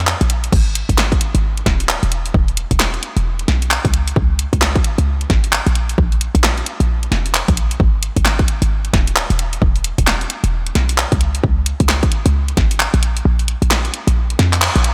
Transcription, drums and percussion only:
0.07 clap loud
0.21 closed hi-hat medium
0.30 closed hi-hat loud
0.44 closed hi-hat medium
0.52 kick loud
0.52 crash medium
0.75 closed hi-hat loud
0.89 kick medium
0.89 closed hi-hat medium
0.98 clap loud
0.98 snare medium
1.12 kick loud
1.12 closed hi-hat soft
1.21 closed hi-hat loud
1.35 closed hi-hat medium
1.57 closed hi-hat medium
1.66 kick loud
1.66 snare medium
1.66 closed hi-hat loud
1.80 closed hi-hat medium
1.89 clap loud
2.03 closed hi-hat medium
2.12 closed hi-hat loud
2.26 closed hi-hat medium
2.34 kick loud
2.48 closed hi-hat soft
2.57 closed hi-hat loud
2.71 kick medium
2.71 closed hi-hat medium
2.80 clap loud
2.80 snare medium
2.94 closed hi-hat soft
3.03 closed hi-hat loud
3.17 closed hi-hat medium
3.39 closed hi-hat medium
3.48 snare medium
3.48 closed hi-hat loud
3.62 closed hi-hat medium
3.71 clap loud
3.85 kick loud
3.85 closed hi-hat medium
3.94 closed hi-hat loud
4.08 closed hi-hat medium
4.16 kick loud
4.39 closed hi-hat loud
4.53 kick medium
4.53 closed hi-hat medium
4.62 clap loud
4.62 snare medium
4.76 kick loud
4.76 closed hi-hat soft
4.84 closed hi-hat loud
4.98 closed hi-hat medium
5.21 closed hi-hat medium
5.30 kick loud
5.30 snare medium
5.30 closed hi-hat loud
5.44 closed hi-hat medium
5.53 clap loud
5.67 closed hi-hat soft
5.75 closed hi-hat loud
5.89 closed hi-hat medium
5.98 kick loud
6.12 closed hi-hat soft
6.21 closed hi-hat loud
6.35 kick medium
6.35 closed hi-hat medium
6.44 clap loud
6.44 snare medium
6.58 closed hi-hat soft
6.66 closed hi-hat loud
6.80 closed hi-hat medium
7.03 closed hi-hat medium
7.12 snare medium
7.12 closed hi-hat loud
7.26 closed hi-hat medium
7.34 clap loud
7.48 kick loud
7.48 closed hi-hat medium
7.57 closed hi-hat loud
7.71 closed hi-hat medium
7.80 kick loud
8.03 closed hi-hat loud
8.16 kick medium
8.16 closed hi-hat medium
8.25 clap loud
8.25 snare medium
8.39 kick loud
8.39 closed hi-hat soft
8.48 closed hi-hat loud
8.62 closed hi-hat medium
8.85 closed hi-hat medium
8.94 kick loud
8.94 snare medium
8.94 closed hi-hat loud
9.07 closed hi-hat medium
9.16 clap loud
9.30 closed hi-hat medium
9.39 closed hi-hat loud
9.53 closed hi-hat medium
9.62 kick loud
9.76 closed hi-hat soft
9.84 closed hi-hat loud
9.98 kick medium
9.98 closed hi-hat medium
10.07 clap loud
10.07 snare medium
10.21 closed hi-hat soft
10.30 closed hi-hat loud
10.44 closed hi-hat medium
10.67 closed hi-hat medium
10.75 snare medium
10.75 closed hi-hat loud
10.89 closed hi-hat medium
10.98 clap loud
11.12 kick loud
11.12 closed hi-hat medium
11.21 closed hi-hat loud
11.35 closed hi-hat medium
11.44 kick loud
11.66 closed hi-hat loud
11.80 kick medium
11.80 closed hi-hat medium
11.89 clap loud
11.89 snare medium
12.03 kick loud
12.03 closed hi-hat soft
12.12 closed hi-hat loud
12.26 closed hi-hat medium
12.48 closed hi-hat medium
12.57 kick loud
12.57 snare medium
12.57 closed hi-hat loud
12.71 closed hi-hat medium
12.80 clap loud
12.94 closed hi-hat medium
13.03 closed hi-hat loud
13.17 closed hi-hat medium
13.39 closed hi-hat soft
13.48 closed hi-hat loud
13.62 closed hi-hat medium
13.71 clap loud
13.71 snare medium
13.85 closed hi-hat soft
13.94 closed hi-hat loud
14.08 closed hi-hat medium
14.30 closed hi-hat medium
14.39 snare medium
14.39 closed hi-hat loud
14.53 clap medium
14.53 closed hi-hat medium
14.62 clap loud
14.76 closed hi-hat medium
14.84 closed hi-hat loud

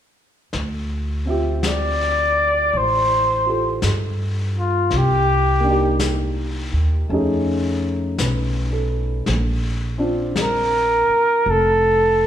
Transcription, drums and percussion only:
0.53 brush sweep soft
0.53 snare soft
1.63 brush sweep soft
1.63 snare soft
1.63 hi-hat pedal soft
2.73 brush sweep soft
3.82 brush sweep soft
3.82 snare soft
3.82 hi-hat pedal soft
4.90 brush sweep soft
4.90 snare soft
5.99 brush sweep soft
5.99 snare soft
5.99 hi-hat pedal soft
7.09 brush sweep soft
8.18 brush sweep soft
8.18 snare soft
8.18 hi-hat pedal soft
9.26 brush sweep soft
9.26 snare soft
10.36 brush sweep soft
10.36 snare soft
10.36 hi-hat pedal soft
11.45 brush sweep soft

